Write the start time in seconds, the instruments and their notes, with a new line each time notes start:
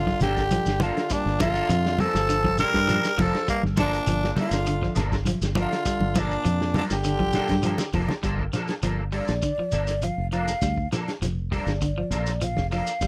Already playing: fingered electric bass G1, trombone D3, tenor saxophone F4
0.07 muted clean electric guitar stroke, kick, snare, high conga
0.20 fingered electric bass G1, trombone D3, clean electric guitar F3 A#3 D4 A4, tenor saxophone G4, snare, closed hi-hat, low conga, shekere
0.37 kick, snare, shekere
0.51 clean electric guitar F3, closed hi-hat, high conga, shekere
0.66 fingered electric bass G1, snare, shekere
0.80 trombone D3, clean electric guitar F3 A#3 D4 A4, tenor saxophone F4, muted clean electric guitar stroke, snare, closed hi-hat, high conga, low conga, shekere
0.97 snare, closed hi-hat
1.10 trombone A#2, clean electric guitar G3, tenor saxophone D4, kick, closed hi-hat, low conga, shekere
1.26 fingered electric bass G1, snare
1.39 clean electric guitar F3 A#3 D4 A4, tenor saxophone F4, kick, snare, closed hi-hat, high conga, shekere
1.43 trombone D3
1.55 clean electric guitar A#3 A4, snare, shekere
1.69 fingered electric bass F2, clean electric guitar F3, snare, closed hi-hat, shekere
1.86 snare
1.98 clean electric guitar F3 G3 A#3 D4 A4, trombone F3, tenor saxophone A4, open hi-hat, high conga, low conga, shekere
2.15 fingered electric bass G1, snare, shekere
2.29 clean electric guitar D3, snare, closed hi-hat, shekere
2.44 clean electric guitar F3, kick, snare, high conga
2.58 clean electric guitar F3 A#3 D4 A4, trombone G3, tenor saxophone A#4, snare, closed hi-hat, shekere
2.74 fingered electric bass G2, kick, snare, closed hi-hat, shekere
2.87 clean electric guitar F3 A#3 D4 A4, closed hi-hat, high conga, shekere
3.04 snare, shekere
3.17 fingered electric bass F1, clean electric guitar F3 A#3 D4 A4, trombone F3, tenor saxophone A4, kick, snare, open hi-hat, high conga, low conga, shekere
3.34 snare, closed hi-hat
3.48 trombone G2, clean electric guitar G3, tenor saxophone A#3, muted fingered electric bass stroke, kick, closed hi-hat, shekere
3.63 fingered electric bass G1, snare, high conga
3.76 trombone A#2, clean electric guitar F3 A#3 D4 A4, tenor saxophone D4, kick, snare, closed hi-hat, high conga, shekere
3.93 snare, closed hi-hat, shekere
4.07 fingered electric bass G1, clean electric guitar F3, closed hi-hat, shekere
4.24 snare
4.35 clean electric guitar F3 G3 A#3 A4, muted clean electric guitar stroke, snare, open hi-hat, high conga, low conga, shekere
4.40 trombone D3, tenor saxophone F4
4.51 fingered electric bass G1, snare, closed hi-hat, shekere
4.66 clean electric guitar D3, closed hi-hat, shekere
4.82 clean electric guitar F3, kick, snare
4.95 fingered electric bass G1, clean electric guitar F3 A#3 D4 A4, snare, closed hi-hat, shekere
5.12 kick, snare, shekere
5.25 clean electric guitar F3, snare, closed hi-hat, high conga, shekere
5.41 fingered electric bass G1, snare, shekere
5.55 trombone D3, clean electric guitar F3 A#3 D4 A4, closed hi-hat, high conga, low conga, shekere
5.62 tenor saxophone F4
5.72 snare, closed hi-hat
5.85 clean electric guitar G3, kick, closed hi-hat, shekere
6.00 fingered electric bass G1, high conga
6.15 trombone A#2, clean electric guitar F3 A#3 D4 A4, kick, snare, closed hi-hat, high conga, shekere
6.20 tenor saxophone D4
6.31 shekere
6.45 fingered electric bass F2, clean electric guitar F3, closed hi-hat, shekere
6.61 snare
6.74 trombone A#2, clean electric guitar F3 G3 A#3 D4 A4, tenor saxophone D4, open hi-hat, high conga, low conga, shekere
6.90 fingered electric bass G1, trombone D3, tenor saxophone G4, snare, shekere
7.04 clean electric guitar D3, closed hi-hat, shekere
7.19 clean electric guitar F3, kick, high conga
7.33 clean electric guitar F3 A#3 D4 A4, snare, closed hi-hat, high conga, shekere
7.48 fingered electric bass G2, kick, snare, closed hi-hat, high conga, shekere
7.63 clean electric guitar F3 A#3 D4 A4, closed hi-hat, shekere
7.78 snare, low conga, shekere
7.93 fingered electric bass F1, clean electric guitar F3 A#3 D4 A4, kick, open hi-hat, low conga, shekere
8.09 snare, closed hi-hat, low conga
8.23 fingered electric bass G1, clean electric guitar F3 G3 A#3 D4 A4, kick, closed hi-hat, shekere
8.39 kick
8.53 clean electric guitar F3 A#3 D4 A4, snare, closed hi-hat, shekere
8.68 snare, closed hi-hat, shekere
8.83 fingered electric bass G1, clean electric guitar F3 A#3 D4 A4, closed hi-hat, shekere
9.12 clean electric guitar F3 G3 A#3 D4 A4, flute D5, open hi-hat, shekere
9.28 fingered electric bass A#1, snare, closed hi-hat, shekere
9.42 clean electric guitar D3, kick, closed hi-hat, shekere
9.58 clean electric guitar F3, muted fingered electric bass stroke
9.72 fingered electric bass G1, clean electric guitar F3 A#3 D4 A4, closed hi-hat, shekere
9.87 snare, closed hi-hat, shekere
10.02 clean electric guitar F3, flute F5, closed hi-hat, shekere
10.18 fingered electric bass F1
10.32 clean electric guitar F3 A#3 D4 A4, flute F5, closed hi-hat, shekere
10.47 snare, closed hi-hat, shekere
10.61 fingered electric bass D2, clean electric guitar G3, kick, snare, closed hi-hat, shekere
10.77 kick
10.92 clean electric guitar F3 A#3 D4 A4, muted clean electric guitar stroke, snare, closed hi-hat, shekere
11.08 snare, closed hi-hat, shekere
11.22 fingered electric bass F1, clean electric guitar F3, snare, closed hi-hat, shekere
11.51 clean electric guitar F3 G3 A#3 D4 A4, flute D5, kick, open hi-hat, shekere
11.66 fingered electric bass G1, snare, closed hi-hat, shekere
11.81 clean electric guitar D3, kick, closed hi-hat, shekere
11.98 clean electric guitar F3
12.11 fingered electric bass A#1, clean electric guitar F3 A#3 A4, muted clean electric guitar stroke, snare, closed hi-hat, shekere
12.26 snare, closed hi-hat, shekere
12.41 clean electric guitar F3, flute F5, closed hi-hat, shekere
12.57 fingered electric bass F1, kick, snare
12.71 clean electric guitar F3 A#3 D4 A4, flute F5, snare, open hi-hat, shekere
12.86 closed hi-hat, shekere
13.01 fingered electric bass G1, clean electric guitar G3, kick, closed hi-hat, shekere